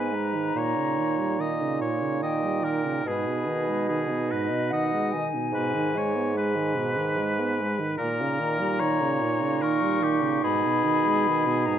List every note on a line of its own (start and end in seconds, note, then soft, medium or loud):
0.00 0.52 G#2 soft
0.00 0.15 B3 soft
0.00 3.03 D#4 soft
0.00 0.59 B4 soft
0.00 0.16 G#5 soft
0.14 0.36 G#3 soft
0.14 1.81 A#5 medium
0.35 0.54 D#3 soft
0.54 0.78 A#2 soft
0.54 3.02 A#2 soft
0.54 1.42 C#5 soft
0.76 1.00 C#3 soft
0.98 1.20 D#3 soft
1.18 1.41 G3 soft
1.39 1.63 D#3 soft
1.39 1.81 D#5 soft
1.62 1.83 C#3 soft
1.81 2.03 A#2 soft
1.81 2.22 C#5 soft
2.02 2.24 C#3 soft
2.22 2.45 D#3 soft
2.22 2.66 D#5 soft
2.22 3.03 G5 medium
2.44 2.65 G3 soft
2.64 2.87 D#3 soft
2.64 3.09 A#4 soft
2.85 3.04 C#3 soft
3.05 3.29 G#2 soft
3.05 5.22 B2 soft
3.05 7.68 D#4 soft
3.05 3.88 G#4 soft
3.05 4.30 B4 medium
3.27 3.49 B2 soft
3.47 3.70 D#3 soft
3.68 3.91 G#3 soft
3.89 4.12 D#3 soft
3.89 4.33 G#4 soft
4.10 4.34 B2 soft
4.28 4.72 B4 soft
4.28 4.72 D#5 medium
4.33 4.53 G#2 soft
4.52 4.74 B2 soft
4.70 4.95 D#3 soft
4.70 5.26 D#5 medium
4.70 5.14 F#5 medium
4.93 5.16 G#3 soft
5.12 5.36 D#3 soft
5.12 6.76 G#5 medium
5.34 5.54 B2 soft
5.52 7.93 G#2 soft
5.52 5.77 B2 soft
5.52 5.99 B4 medium
5.75 5.97 D#3 soft
5.95 6.17 G#3 soft
5.95 6.36 C#5 medium
6.16 6.36 B3 soft
6.35 6.57 G#3 soft
6.35 7.96 B4 medium
6.55 6.78 D#3 soft
6.77 6.98 B2 soft
6.97 7.20 D#3 soft
7.18 7.41 G#3 soft
7.40 7.62 B3 soft
7.60 7.81 G#3 medium
7.79 7.99 D#3 soft
7.98 10.40 A#2 soft
7.98 8.23 A#2 medium
7.98 11.79 D#4 medium
7.98 8.81 A#4 medium
7.98 9.65 A#5 medium
8.21 8.41 C#3 soft
8.40 8.62 D#3 soft
8.61 8.83 G3 soft
8.80 9.03 D#3 soft
8.80 9.63 C#5 medium
9.01 9.23 C#3 soft
9.21 9.43 A#2 medium
9.41 9.64 C#3 soft
9.62 9.83 D#3 soft
9.62 10.05 A#4 medium
9.62 10.46 C#6 medium
9.82 10.03 G3 medium
10.02 10.23 D#3 medium
10.02 10.43 G4 medium
10.21 10.43 C#3 soft
10.43 10.67 G#2 soft
10.43 11.79 B2 soft
10.43 11.79 G#4 medium
10.43 11.67 B5 medium
10.65 10.87 B2 soft
10.85 11.07 D#3 soft
11.05 11.29 G#3 soft
11.28 11.48 D#3 medium
11.47 11.68 B2 soft
11.66 11.79 G#2 soft
11.66 11.79 A#5 medium